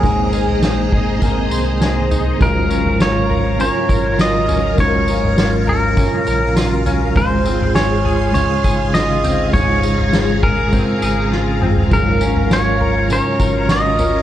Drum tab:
TB |x-x-x---x-x-x-x-|x-x-x---x-x-x-x-|x-x-x---x-x-x-x-|x-x-x---x-x-x-x-|
SD |----o-------o---|----o-------o---|----o-------o---|----o-------o---|
T2 |----------------|----------------|----------------|----------------|
FT |o--o--o-o-----o-|o--o--o-------o-|o--o--o-------o-|o--o--o-o-----o-|
BD |o-----o-o-------|o---------o-----|o-------o-------|o---------o-----|

TB |x-x-x---x-x-----|x-x-x---x-x-x-x-|
SD |----o-------o---|----o-------o---|
T2 |--------------o-|----------------|
FT |o--o--o--------o|o--o--o-------o-|
BD |o-----o-o-------|o---------o-----|